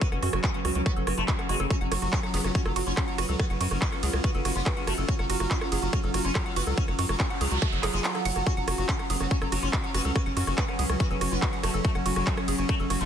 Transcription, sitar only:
0.01 B3
0.12 C#3
0.23 C#3
0.33 C#3
0.54 C#3
0.65 C#3
0.75 C#3
0.86 B3
0.96 C#3
1.07 C#3
1.18 A3
1.28 C#3
1.39 C#3
1.49 G#3
1.60 C#3
1.70 C#4
1.81 F#3
1.92 F#3
2.02 F#3
2.13 C#4
2.23 F#3
2.34 F#3
2.44 F#3
2.55 C#4
2.66 F#3
2.76 F#3
2.87 C#4
2.97 F#3
3.08 F#3
3.18 B3
3.29 F#3
3.39 B3
3.50 C#3
3.61 C#3
3.71 C#3
3.82 B3
3.92 C#3
4.03 C#3
4.13 C#3
4.24 B3
4.35 C#3
4.45 C#3
4.56 B3
4.66 C#3
4.77 C#3
4.87 A3
4.98 C#3
5.08 C#4
5.19 F#3
5.30 F#3
5.40 F#3
5.51 C#4
5.61 F#3
5.72 F#3
5.82 F#3
5.93 C#4
6.04 F#3
6.14 F#3
6.25 C#4
6.35 F#3
6.46 F#3
6.56 B3
6.67 F#3
6.77 C#4
6.88 F#3
6.99 F#3
7.09 F#3
7.20 C#4
7.30 F#3
7.41 F#3
7.51 F#3
7.62 A3
7.73 F#3
7.83 F#3
7.94 G#3
8.04 F#3
8.15 F#3
8.25 F#3
8.36 F#3
8.47 C#4
8.57 F#3
8.68 F#3
8.78 F#3
8.89 C#4
8.99 F#3
9.10 F#3
9.20 F#3
9.31 C#4
9.42 F#3
9.52 F#3
9.63 C#4
9.84 F#3
9.94 B3
10.05 F#3
10.16 B3
10.26 C#3
10.37 C#3
10.47 C#3
10.58 B3
10.68 C#3
10.79 C#3
10.89 C#3
11.00 B3
11.11 C#3
11.21 C#3
11.32 B3
11.42 C#3
11.53 C#3
11.64 A3
11.74 C#3
11.85 A3
11.95 C#3
12.06 C#3
12.16 C#3
12.27 A3
12.37 C#3
12.48 C#3
12.59 C#3
12.69 A3
12.80 C#3
12.90 C#3
13.01 A3

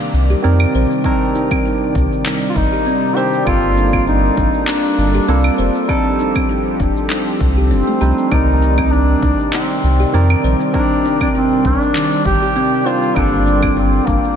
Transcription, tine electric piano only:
Already playing: D#3 C4 A#4 D5
0.42 D#3 C4 A#4 D5
1.04 D#3 C4 D4 A#4
3.16 D#3 C4 D4 C5
3.45 G3 A#3 F4 A4
5.28 G3 A#3 F4 A4
5.88 G3 D4 D#4 A4
8.00 G3 D4 D#4 C5
8.30 D#3 C4 A#4 D5
10.13 D#3 C4 A#4 D5
10.73 D#3 C4 D4 A#4
12.85 D#3 C4 D4 C5
13.15 G3 A#3 F4 A4

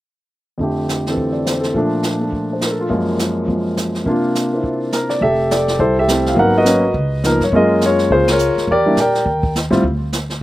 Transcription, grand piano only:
0.58 F2 D3 A3
0.63 G4
1.08 E3 C4 A4
1.32 D5
1.46 C5
1.60 A4
1.73 A#2 F3 A3
1.78 D4
2.20 A3 D4
2.53 C5
2.62 A#4
2.71 A4
2.81 F4
2.90 F#2 F3 G#3 A#3
3.46 F3 G#3
4.04 C3 A#3 D4
4.09 F4
4.53 A#3 C4 E4
4.93 A#4
5.10 D5
5.22 G4 A4 E5
5.51 G4 A4 D5
5.80 E4 A4 C5
5.99 G4 A4 E5
6.08 G3 A3 C4 E4
6.28 F5
6.35 F#3 A#3 B3 D#4 B4
6.39 A#4 F#5
6.58 F#4 B4 D#5
6.65 F#3 A#3 B3 C#4
7.24 F3 A#3 B3 D#4 A#4
7.44 C#5
7.53 G#3 A#3 C#4 F4 G#4 A#4 D#5
7.85 F4 A#4 C#5
8.12 F4 G#4 C5
8.31 F4 A#4 C#5
8.71 G4 A#4 D5
8.86 G3 A#3 D4 E4
9.00 A#4 D5 G5
9.71 G3 C4 E4 F4

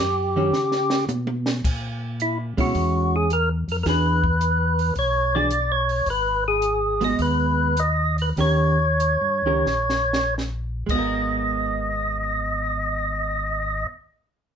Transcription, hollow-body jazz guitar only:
0.36 D#3 G3 C#4 F#4
2.57 G#3 C#4 E4
3.86 E3 D4 F#4 G#4
5.35 E3 D4 F#4 G#4
7.01 G#3 B3 F#4
8.38 D#3 C#4 G4 A#4
9.46 D#3 C#4 G4 A#4
10.86 G#3
10.92 B3 F#4
10.99 A#4

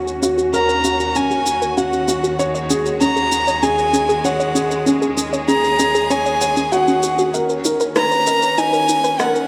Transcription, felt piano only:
Already playing: C#4 F#4 A#4
0.23 F#4
0.54 A#4
0.85 F#4
1.15 C#4
1.77 F#4
2.08 F#4
2.39 C#5
2.70 G#4
3.01 C#4
3.63 G#4
3.94 G#4
4.25 C#5
4.56 G#4
4.87 C#4
5.48 G#4
5.79 G#4
6.10 C#5
6.41 C#5
6.72 F#4
7.34 A#4
7.65 A#4
7.96 B4
8.27 A#4
8.58 D#4
9.20 A#4

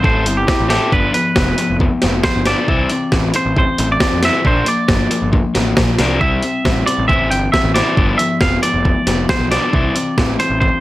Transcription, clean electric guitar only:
0.05 C5
0.37 G4
0.70 G4
0.93 B4
1.14 B4
2.24 C5
2.47 D5
3.36 C5
3.58 C5
3.92 D5
4.25 E5
4.47 C5
4.68 D5
6.21 E5
6.86 D5
7.08 E5
7.31 G5
7.52 E5
7.74 D5
8.18 E5
8.41 F5
8.63 D5
9.30 C5
9.51 D5
10.40 C5
10.60 C5

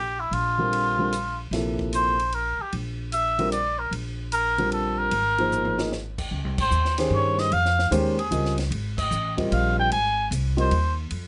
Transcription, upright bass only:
Already playing: A#1
0.31 A#1
1.51 A#1
2.59 muted upright bass stroke
2.73 A#1
3.91 A#1
5.11 G#1
6.31 C#2
6.45 C2
6.58 G#1
6.71 D#2
7.10 G2
7.51 F2
7.91 D#2
8.31 C#2
8.70 G#1
9.11 A1
9.52 A#1
9.91 G#1
10.31 C2
10.71 D#2
11.11 F2

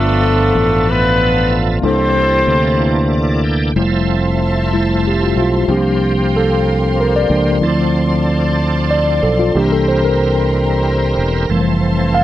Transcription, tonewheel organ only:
Already playing: F3 B3 A4 E5
1.82 E3 A#3 D4 A4
3.11 D5
3.44 G5
3.76 F3 C4 G4 E5
3.84 A4
5.68 F3 A#3 C4 G4
7.63 E3 C4 D4 A4
7.70 F3
9.56 G3 C4 E4 A4
9.64 A#4
11.50 E3 C4 A4

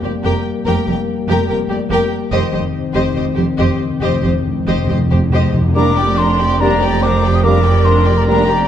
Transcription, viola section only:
0.03 G4
0.24 G4
0.67 G4
0.86 G4
1.28 G4
1.49 G4
1.70 G4
1.89 G4
2.32 G4
2.53 G4
2.95 G4
3.16 G4
3.36 G4
3.59 G4
4.02 G4
4.23 G4
4.67 G4
4.89 G4
5.11 G4
5.32 G4
5.76 D4
5.98 G4
6.20 D4
6.41 G4
6.61 D4
6.83 G4
7.04 D4
7.25 G4
7.46 D4
7.66 G4
7.88 D4
8.09 G4
8.28 D4
8.49 G4

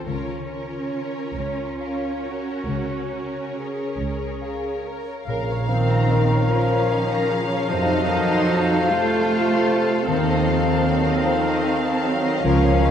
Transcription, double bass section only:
0.05 C#2
1.36 C#2
2.67 C#2
3.97 C#2
5.27 A#1
7.69 F2
10.07 D#2
12.44 C#2

